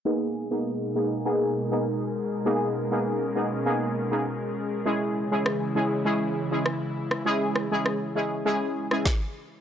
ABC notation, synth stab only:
X:1
M:4/4
L:1/16
Q:1/4=100
K:G#m
V:1 name="Synth stab"
[A,B,DG]3 [A,B,DG]3 [A,B,DG]2 [A,B,DG]3 [A,B,DG] z4 | [A,B,DG]3 [A,B,DG]3 [A,B,DG]2 [A,B,DG]3 [A,B,DG] z4 | [G,CEG]3 [G,CEG]3 [G,CEG]2 [G,CEG]3 [G,CEG] z4 | [G,CEG]3 [G,CEG]3 [G,CEG]2 [G,CEG]3 [G,CEG] z4 |]